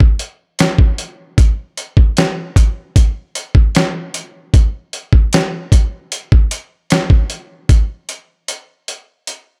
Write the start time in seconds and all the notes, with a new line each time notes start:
0.00 kick
0.19 closed hi-hat
0.59 snare, closed hi-hat
0.78 kick
0.98 closed hi-hat
1.38 kick, closed hi-hat
1.77 closed hi-hat
1.97 kick
2.17 snare, closed hi-hat
2.56 kick, closed hi-hat
2.96 kick, closed hi-hat
3.35 closed hi-hat
3.55 kick
3.75 snare, closed hi-hat
4.14 closed hi-hat
4.54 kick, closed hi-hat
4.93 closed hi-hat
5.13 kick
5.33 snare, closed hi-hat
5.72 kick, closed hi-hat
6.12 closed hi-hat
6.32 kick
6.51 closed hi-hat
6.90 snare, closed hi-hat
7.10 kick
7.30 closed hi-hat
7.69 kick, closed hi-hat
8.09 closed hi-hat
8.48 closed hi-hat
8.88 closed hi-hat
9.27 closed hi-hat